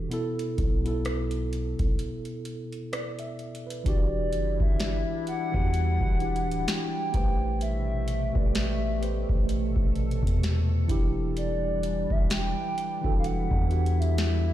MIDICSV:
0, 0, Header, 1, 6, 480
1, 0, Start_track
1, 0, Key_signature, 1, "minor"
1, 0, Tempo, 937500
1, 56, Time_signature, 4, 2, 24, 8
1, 7441, End_track
2, 0, Start_track
2, 0, Title_t, "Soft synth lead"
2, 0, Program_c, 0, 80
2, 1983, Note_on_c, 0, 74, 90
2, 2338, Note_off_c, 0, 74, 0
2, 2362, Note_on_c, 0, 76, 96
2, 2679, Note_off_c, 0, 76, 0
2, 2705, Note_on_c, 0, 78, 121
2, 3425, Note_on_c, 0, 79, 113
2, 3433, Note_off_c, 0, 78, 0
2, 3901, Note_off_c, 0, 79, 0
2, 3903, Note_on_c, 0, 76, 112
2, 4359, Note_off_c, 0, 76, 0
2, 4383, Note_on_c, 0, 76, 94
2, 4839, Note_off_c, 0, 76, 0
2, 5822, Note_on_c, 0, 74, 104
2, 6204, Note_on_c, 0, 76, 94
2, 6211, Note_off_c, 0, 74, 0
2, 6300, Note_off_c, 0, 76, 0
2, 6304, Note_on_c, 0, 79, 120
2, 6730, Note_off_c, 0, 79, 0
2, 6753, Note_on_c, 0, 77, 83
2, 6785, Note_on_c, 0, 78, 107
2, 6792, Note_off_c, 0, 77, 0
2, 7165, Note_on_c, 0, 76, 107
2, 7173, Note_off_c, 0, 78, 0
2, 7441, Note_off_c, 0, 76, 0
2, 7441, End_track
3, 0, Start_track
3, 0, Title_t, "Tine electric piano"
3, 0, Program_c, 1, 4
3, 0, Control_c, 1, 64, 127
3, 0, Note_on_c, 1, 52, 71
3, 0, Note_on_c, 1, 62, 66
3, 0, Note_on_c, 1, 66, 65
3, 0, Note_on_c, 1, 69, 79
3, 47, Note_on_c, 1, 47, 103
3, 54, Note_on_c, 1, 59, 94
3, 62, Control_c, 1, 64, 0
3, 62, Note_on_c, 1, 64, 97
3, 63, Note_off_c, 1, 66, 0
3, 65, Note_off_c, 1, 62, 0
3, 66, Note_off_c, 1, 52, 0
3, 67, Note_off_c, 1, 69, 0
3, 69, Note_on_c, 1, 69, 113
3, 151, Control_c, 1, 64, 127
3, 398, Note_off_c, 1, 47, 0
3, 401, Note_off_c, 1, 59, 0
3, 405, Note_off_c, 1, 64, 0
3, 409, Note_off_c, 1, 69, 0
3, 425, Note_on_c, 1, 47, 79
3, 433, Note_on_c, 1, 59, 77
3, 440, Note_on_c, 1, 64, 70
3, 448, Note_on_c, 1, 69, 85
3, 1302, Note_off_c, 1, 47, 0
3, 1306, Note_off_c, 1, 59, 0
3, 1309, Note_off_c, 1, 64, 0
3, 1314, Note_off_c, 1, 69, 0
3, 1498, Note_on_c, 1, 74, 68
3, 1630, Note_off_c, 1, 74, 0
3, 1636, Note_on_c, 1, 76, 70
3, 1864, Note_off_c, 1, 76, 0
3, 1877, Note_on_c, 1, 71, 59
3, 1966, Note_on_c, 1, 52, 88
3, 1974, Note_on_c, 1, 62, 83
3, 1981, Note_on_c, 1, 66, 80
3, 1983, Control_c, 1, 64, 0
3, 1989, Note_on_c, 1, 67, 99
3, 2078, Control_c, 1, 64, 127
3, 2105, Note_off_c, 1, 71, 0
3, 2753, Note_off_c, 1, 52, 0
3, 2757, Note_off_c, 1, 62, 0
3, 2761, Note_off_c, 1, 66, 0
3, 2765, Note_off_c, 1, 67, 0
3, 2825, Note_on_c, 1, 52, 74
3, 2831, Note_on_c, 1, 62, 66
3, 2839, Note_on_c, 1, 66, 70
3, 2847, Note_on_c, 1, 67, 86
3, 3147, Note_off_c, 1, 52, 0
3, 3150, Note_off_c, 1, 62, 0
3, 3154, Note_off_c, 1, 66, 0
3, 3158, Note_off_c, 1, 67, 0
3, 3165, Note_on_c, 1, 52, 73
3, 3173, Note_on_c, 1, 62, 61
3, 3181, Note_on_c, 1, 64, 66
3, 3188, Note_on_c, 1, 67, 79
3, 3645, Note_on_c, 1, 57, 77
3, 3647, Note_off_c, 1, 67, 0
3, 3651, Note_off_c, 1, 52, 0
3, 3653, Note_on_c, 1, 67, 70
3, 3655, Note_off_c, 1, 62, 0
3, 3659, Note_off_c, 1, 64, 0
3, 3660, Note_on_c, 1, 71, 73
3, 3662, Control_c, 1, 64, 0
3, 3668, Note_on_c, 1, 72, 83
3, 3750, Control_c, 1, 64, 127
3, 4215, Note_off_c, 1, 57, 0
3, 4219, Note_off_c, 1, 67, 0
3, 4222, Note_off_c, 1, 71, 0
3, 4226, Note_off_c, 1, 72, 0
3, 4262, Note_on_c, 1, 57, 67
3, 4270, Note_on_c, 1, 67, 61
3, 4278, Note_on_c, 1, 71, 61
3, 4285, Note_on_c, 1, 74, 75
3, 4586, Note_off_c, 1, 57, 0
3, 4590, Note_off_c, 1, 67, 0
3, 4594, Note_off_c, 1, 71, 0
3, 4597, Note_off_c, 1, 74, 0
3, 4604, Note_on_c, 1, 57, 75
3, 4612, Note_on_c, 1, 67, 65
3, 4619, Note_on_c, 1, 71, 65
3, 4627, Note_on_c, 1, 72, 81
3, 5506, Note_off_c, 1, 57, 0
3, 5510, Note_off_c, 1, 67, 0
3, 5514, Note_off_c, 1, 71, 0
3, 5518, Note_off_c, 1, 72, 0
3, 5565, Note_on_c, 1, 52, 95
3, 5572, Note_on_c, 1, 62, 86
3, 5580, Note_on_c, 1, 64, 87
3, 5584, Control_c, 1, 64, 0
3, 5588, Note_on_c, 1, 67, 104
3, 5687, Control_c, 1, 64, 127
3, 6467, Note_off_c, 1, 52, 0
3, 6470, Note_off_c, 1, 62, 0
3, 6474, Note_off_c, 1, 64, 0
3, 6478, Note_off_c, 1, 67, 0
3, 6663, Note_on_c, 1, 52, 77
3, 6671, Note_on_c, 1, 62, 72
3, 6678, Note_on_c, 1, 66, 73
3, 6686, Note_on_c, 1, 69, 88
3, 6986, Note_off_c, 1, 52, 0
3, 6990, Note_off_c, 1, 62, 0
3, 6994, Note_off_c, 1, 66, 0
3, 6998, Note_off_c, 1, 69, 0
3, 7004, Note_on_c, 1, 52, 72
3, 7012, Note_on_c, 1, 62, 69
3, 7019, Note_on_c, 1, 66, 68
3, 7027, Note_on_c, 1, 67, 82
3, 7441, Note_off_c, 1, 52, 0
3, 7441, Note_off_c, 1, 62, 0
3, 7441, Note_off_c, 1, 66, 0
3, 7441, Note_off_c, 1, 67, 0
3, 7441, End_track
4, 0, Start_track
4, 0, Title_t, "Ambient pad"
4, 0, Program_c, 2, 92
4, 1976, Note_on_c, 2, 55, 70
4, 1977, Note_on_c, 2, 52, 80
4, 1977, Note_on_c, 2, 62, 73
4, 1977, Note_on_c, 2, 64, 86
4, 3640, Note_off_c, 2, 52, 0
4, 3640, Note_off_c, 2, 55, 0
4, 3640, Note_off_c, 2, 62, 0
4, 3640, Note_off_c, 2, 64, 0
4, 3656, Note_on_c, 2, 47, 72
4, 3656, Note_on_c, 2, 57, 75
4, 3657, Note_on_c, 2, 67, 85
4, 3658, Note_on_c, 2, 48, 79
4, 4607, Note_off_c, 2, 67, 0
4, 4617, Note_on_c, 2, 69, 87
4, 5557, Note_off_c, 2, 47, 0
4, 5557, Note_off_c, 2, 57, 0
4, 5558, Note_off_c, 2, 48, 0
4, 5567, Note_off_c, 2, 69, 0
4, 5575, Note_on_c, 2, 52, 85
4, 5575, Note_on_c, 2, 55, 72
4, 5575, Note_on_c, 2, 62, 74
4, 6526, Note_off_c, 2, 62, 0
4, 6534, Note_on_c, 2, 64, 71
4, 7441, Note_off_c, 2, 52, 0
4, 7441, Note_off_c, 2, 55, 0
4, 7441, Note_off_c, 2, 64, 0
4, 7441, End_track
5, 0, Start_track
5, 0, Title_t, "808-style bass"
5, 0, Program_c, 3, 38
5, 299, Note_on_c, 3, 35, 95
5, 896, Note_off_c, 3, 35, 0
5, 920, Note_on_c, 3, 35, 99
5, 1015, Note_off_c, 3, 35, 0
5, 1977, Note_on_c, 3, 28, 107
5, 2218, Note_on_c, 3, 30, 93
5, 2226, Note_off_c, 3, 28, 0
5, 2350, Note_off_c, 3, 30, 0
5, 2358, Note_on_c, 3, 31, 91
5, 2587, Note_off_c, 3, 31, 0
5, 2838, Note_on_c, 3, 40, 101
5, 3068, Note_off_c, 3, 40, 0
5, 3078, Note_on_c, 3, 28, 102
5, 3317, Note_on_c, 3, 26, 95
5, 3325, Note_off_c, 3, 28, 0
5, 3412, Note_off_c, 3, 26, 0
5, 3657, Note_on_c, 3, 33, 100
5, 4256, Note_off_c, 3, 33, 0
5, 4279, Note_on_c, 3, 33, 91
5, 4738, Note_off_c, 3, 33, 0
5, 4759, Note_on_c, 3, 33, 99
5, 4988, Note_off_c, 3, 33, 0
5, 4999, Note_on_c, 3, 33, 98
5, 5228, Note_off_c, 3, 33, 0
5, 5237, Note_on_c, 3, 40, 104
5, 5564, Note_off_c, 3, 40, 0
5, 5578, Note_on_c, 3, 28, 97
5, 6176, Note_off_c, 3, 28, 0
5, 6199, Note_on_c, 3, 28, 97
5, 6428, Note_off_c, 3, 28, 0
5, 6680, Note_on_c, 3, 28, 102
5, 6908, Note_off_c, 3, 28, 0
5, 6919, Note_on_c, 3, 40, 98
5, 7441, Note_off_c, 3, 40, 0
5, 7441, End_track
6, 0, Start_track
6, 0, Title_t, "Drums"
6, 59, Note_on_c, 9, 42, 66
6, 110, Note_off_c, 9, 42, 0
6, 201, Note_on_c, 9, 42, 59
6, 252, Note_off_c, 9, 42, 0
6, 297, Note_on_c, 9, 36, 85
6, 297, Note_on_c, 9, 42, 53
6, 348, Note_off_c, 9, 36, 0
6, 349, Note_off_c, 9, 42, 0
6, 439, Note_on_c, 9, 42, 45
6, 490, Note_off_c, 9, 42, 0
6, 538, Note_on_c, 9, 42, 61
6, 541, Note_on_c, 9, 37, 100
6, 589, Note_off_c, 9, 42, 0
6, 592, Note_off_c, 9, 37, 0
6, 670, Note_on_c, 9, 42, 52
6, 722, Note_off_c, 9, 42, 0
6, 782, Note_on_c, 9, 42, 63
6, 833, Note_off_c, 9, 42, 0
6, 918, Note_on_c, 9, 36, 90
6, 918, Note_on_c, 9, 42, 44
6, 969, Note_off_c, 9, 36, 0
6, 969, Note_off_c, 9, 42, 0
6, 1019, Note_on_c, 9, 42, 67
6, 1070, Note_off_c, 9, 42, 0
6, 1153, Note_on_c, 9, 42, 43
6, 1204, Note_off_c, 9, 42, 0
6, 1255, Note_on_c, 9, 42, 64
6, 1307, Note_off_c, 9, 42, 0
6, 1395, Note_on_c, 9, 42, 39
6, 1446, Note_off_c, 9, 42, 0
6, 1499, Note_on_c, 9, 42, 74
6, 1501, Note_on_c, 9, 37, 112
6, 1551, Note_off_c, 9, 42, 0
6, 1552, Note_off_c, 9, 37, 0
6, 1631, Note_on_c, 9, 42, 52
6, 1683, Note_off_c, 9, 42, 0
6, 1736, Note_on_c, 9, 42, 39
6, 1787, Note_off_c, 9, 42, 0
6, 1817, Note_on_c, 9, 42, 50
6, 1868, Note_off_c, 9, 42, 0
6, 1896, Note_on_c, 9, 42, 68
6, 1948, Note_off_c, 9, 42, 0
6, 1976, Note_on_c, 9, 36, 118
6, 1977, Note_on_c, 9, 42, 66
6, 2027, Note_off_c, 9, 36, 0
6, 2028, Note_off_c, 9, 42, 0
6, 2215, Note_on_c, 9, 42, 69
6, 2266, Note_off_c, 9, 42, 0
6, 2356, Note_on_c, 9, 36, 94
6, 2407, Note_off_c, 9, 36, 0
6, 2456, Note_on_c, 9, 42, 65
6, 2459, Note_on_c, 9, 38, 109
6, 2507, Note_off_c, 9, 42, 0
6, 2510, Note_off_c, 9, 38, 0
6, 2698, Note_on_c, 9, 42, 64
6, 2749, Note_off_c, 9, 42, 0
6, 2837, Note_on_c, 9, 36, 93
6, 2888, Note_off_c, 9, 36, 0
6, 2937, Note_on_c, 9, 42, 65
6, 2988, Note_off_c, 9, 42, 0
6, 3076, Note_on_c, 9, 36, 94
6, 3128, Note_off_c, 9, 36, 0
6, 3176, Note_on_c, 9, 42, 40
6, 3227, Note_off_c, 9, 42, 0
6, 3256, Note_on_c, 9, 42, 52
6, 3307, Note_off_c, 9, 42, 0
6, 3336, Note_on_c, 9, 42, 67
6, 3387, Note_off_c, 9, 42, 0
6, 3419, Note_on_c, 9, 42, 74
6, 3421, Note_on_c, 9, 38, 113
6, 3470, Note_off_c, 9, 42, 0
6, 3472, Note_off_c, 9, 38, 0
6, 3655, Note_on_c, 9, 42, 65
6, 3656, Note_on_c, 9, 36, 103
6, 3706, Note_off_c, 9, 42, 0
6, 3707, Note_off_c, 9, 36, 0
6, 3896, Note_on_c, 9, 42, 67
6, 3948, Note_off_c, 9, 42, 0
6, 4135, Note_on_c, 9, 42, 75
6, 4187, Note_off_c, 9, 42, 0
6, 4277, Note_on_c, 9, 36, 96
6, 4328, Note_off_c, 9, 36, 0
6, 4377, Note_on_c, 9, 42, 64
6, 4380, Note_on_c, 9, 38, 107
6, 4428, Note_off_c, 9, 42, 0
6, 4431, Note_off_c, 9, 38, 0
6, 4621, Note_on_c, 9, 42, 64
6, 4673, Note_off_c, 9, 42, 0
6, 4758, Note_on_c, 9, 36, 93
6, 4809, Note_off_c, 9, 36, 0
6, 4859, Note_on_c, 9, 42, 65
6, 4910, Note_off_c, 9, 42, 0
6, 4997, Note_on_c, 9, 36, 94
6, 5048, Note_off_c, 9, 36, 0
6, 5097, Note_on_c, 9, 42, 38
6, 5148, Note_off_c, 9, 42, 0
6, 5178, Note_on_c, 9, 42, 52
6, 5229, Note_off_c, 9, 42, 0
6, 5235, Note_on_c, 9, 36, 80
6, 5259, Note_on_c, 9, 42, 70
6, 5287, Note_off_c, 9, 36, 0
6, 5310, Note_off_c, 9, 42, 0
6, 5342, Note_on_c, 9, 42, 75
6, 5344, Note_on_c, 9, 38, 114
6, 5394, Note_off_c, 9, 42, 0
6, 5395, Note_off_c, 9, 38, 0
6, 5577, Note_on_c, 9, 36, 100
6, 5578, Note_on_c, 9, 42, 68
6, 5628, Note_off_c, 9, 36, 0
6, 5629, Note_off_c, 9, 42, 0
6, 5820, Note_on_c, 9, 42, 70
6, 5871, Note_off_c, 9, 42, 0
6, 6059, Note_on_c, 9, 42, 73
6, 6110, Note_off_c, 9, 42, 0
6, 6197, Note_on_c, 9, 36, 98
6, 6249, Note_off_c, 9, 36, 0
6, 6299, Note_on_c, 9, 42, 65
6, 6302, Note_on_c, 9, 38, 107
6, 6350, Note_off_c, 9, 42, 0
6, 6353, Note_off_c, 9, 38, 0
6, 6542, Note_on_c, 9, 42, 67
6, 6593, Note_off_c, 9, 42, 0
6, 6678, Note_on_c, 9, 36, 92
6, 6730, Note_off_c, 9, 36, 0
6, 6780, Note_on_c, 9, 42, 63
6, 6832, Note_off_c, 9, 42, 0
6, 6918, Note_on_c, 9, 36, 94
6, 6969, Note_off_c, 9, 36, 0
6, 7018, Note_on_c, 9, 42, 40
6, 7069, Note_off_c, 9, 42, 0
6, 7098, Note_on_c, 9, 42, 56
6, 7149, Note_off_c, 9, 42, 0
6, 7177, Note_on_c, 9, 42, 68
6, 7229, Note_off_c, 9, 42, 0
6, 7261, Note_on_c, 9, 42, 76
6, 7262, Note_on_c, 9, 38, 117
6, 7312, Note_off_c, 9, 42, 0
6, 7313, Note_off_c, 9, 38, 0
6, 7441, End_track
0, 0, End_of_file